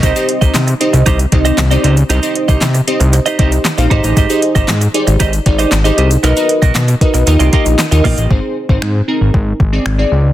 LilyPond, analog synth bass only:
\new Staff \with { instrumentName = "Analog synth bass" } { \clef bass \time 4/4 \key aes \lydian \tempo 4 = 116 c,16 r8 c,16 c8 r16 c,16 c,8 c,8 c,8 des,8 | c,16 r8 c,16 c8 r16 c,8 r16 c,8 r16 bes,,16 aes,,16 a,,16 | aes,,16 r8 aes,,16 aes,8 r16 aes,,16 aes,,8 aes,,8 aes,,8 c,8 | b,,16 r8 b,,16 b,8 r16 b,,16 ees,16 c,16 r16 bes,,16 r16 ees,16 bes,,16 a,,16 |
aes,,16 r8 aes,,16 aes,8 r16 aes,,16 aes,,8 aes,,8 aes,,8 des,8 | }